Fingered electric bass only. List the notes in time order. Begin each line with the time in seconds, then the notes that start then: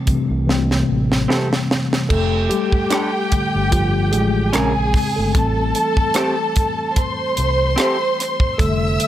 0.08 muted fingered electric bass stroke
0.30 C2
0.89 A1
2.11 F1
3.33 muted fingered electric bass stroke
3.56 G1
4.14 A1
4.55 A#1
4.77 A#1
5.18 G1
5.35 A1
7.38 C2
8.60 F1